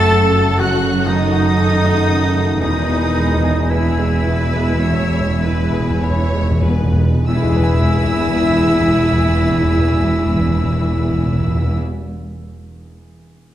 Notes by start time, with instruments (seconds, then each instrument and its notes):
Already playing: double bass section F#1, grand piano F#2 C#3 A3 F#4 A4, cello section F#2, harp F#2 A3 F#5 A5, french horn section A3, violin section F#4 A4 A6, viola section A4, clarinet A4, oboe A4, flute section A5
0.12 grand piano C#3
0.36 grand piano A3, harp F#4
0.58 grand piano F#2, harp C#3, french horn section F#3, clarinet F#4, viola section F#4, oboe F#4, flute section F#5, violin section F#6
0.83 grand piano C#3, harp A3
1.07 french horn section D#3, grand piano A3, oboe D#4, viola section D#4, clarinet D#4, harp A4, flute section D#5, violin section D#6
1.32 grand piano F#4, harp F#5
1.57 violin section F#4 A4, grand piano A4, harp A5
1.82 grand piano A3, harp F#5
2.08 grand piano C#3, harp A4
2.35 grand piano A3, harp F#4
2.60 double bass section E1, cello section E2, grand piano E2, harp E2, french horn section D#3, oboe D#4, viola section D#4, clarinet D#4, violin section G#4 B4 D#6, flute section D#5
2.71 timpani E2
2.88 timpani E2, grand piano B2, harp G#3
2.98 timpani E2
3.07 timpani E2
3.15 timpani E2, grand piano G#3, harp B4
3.25 timpani E2
3.35 timpani E2
3.43 timpani E2, grand piano G#4, harp G#5
3.53 timpani E2
3.61 timpani E2
3.70 french horn section E3, viola section E4, oboe E4, clarinet E4, violin section G#4 E6, grand piano B4, flute section E5, harp B5
3.80 timpani E2
3.89 timpani E2
3.98 timpani E2, grand piano G#3, harp G#5
4.07 timpani E2
4.16 timpani E2
4.25 timpani E2, grand piano B2, harp G#4, violin section B4
4.34 timpani E2
4.44 timpani E2
4.54 timpani E2, harp G#3, grand piano G#3
4.63 timpani E2
4.73 timpani E2
4.81 timpani E2, grand piano E2, harp B2, violin section C#5
4.92 timpani E2
5.01 timpani E2
5.10 timpani E2, harp G#3
5.14 grand piano B2
5.20 timpani E2
5.29 timpani E2
5.39 timpani E2, grand piano G#3, violin section B4, harp B4
5.50 timpani E2
5.60 timpani E2
5.70 timpani E2, grand piano G#4, harp G#5
5.80 timpani E2
5.91 timpani E2
6.00 timpani E2, violin section C#5, harp B5
6.04 grand piano B4
6.10 timpani E2
6.20 timpani E2
6.31 timpani E2, harp G#5
6.35 grand piano G#3
6.41 timpani E2
6.51 timpani E2
6.62 timpani E2, harp G#4, violin section B4
6.66 grand piano B2
6.73 timpani E2
6.83 timpani E2
6.93 timpani E2, harp G#3
6.98 grand piano G#3
7.03 timpani E2
7.14 timpani E2
7.27 double bass section E1, harp E2, cello section E2, timpani E2, grand piano E2, french horn section E4, viola section E4, clarinet E4, violin section G#4 B4 E6, oboe E5, flute section E5
7.34 timpani E2, harp E3, grand piano E3
7.41 timpani E2, harp G#3, grand piano G#3
7.48 timpani E2, harp G#4, grand piano G#4
7.55 timpani E2, harp B4, grand piano B4
7.62 harp G#5, grand piano G#5
7.67 timpani E2
7.74 timpani E2
7.81 timpani E2
7.89 timpani E2
7.97 timpani E2
8.05 timpani E2
8.12 timpani E2
8.19 timpani E2
8.26 timpani E2
8.34 timpani E2
8.42 timpani E2
8.49 timpani E2
8.57 timpani E2
8.65 timpani E2
8.73 timpani E2
8.80 timpani E2
8.88 timpani E2
8.96 timpani E2
9.03 timpani E2
9.11 timpani E2
9.19 timpani E2
9.27 timpani E2
9.34 timpani E2
9.42 timpani E2
9.50 timpani E2
9.57 timpani E2
9.64 timpani E2
9.71 timpani E2
9.79 timpani E2
9.87 timpani E2
9.94 timpani E2
10.02 timpani E2
10.10 timpani E2
10.18 timpani E2
10.25 timpani E2
10.33 timpani E2
10.40 timpani E2
10.48 timpani E2
10.56 timpani E2
10.64 timpani E2
10.71 timpani E2
10.79 timpani E2
10.87 timpani E2
10.94 timpani E2
11.02 timpani E2
11.10 timpani E2
11.17 timpani E2
11.25 timpani E2
11.33 timpani E2
11.40 timpani E2
11.48 timpani E2
11.55 timpani E2
11.62 timpani E2
11.70 timpani E2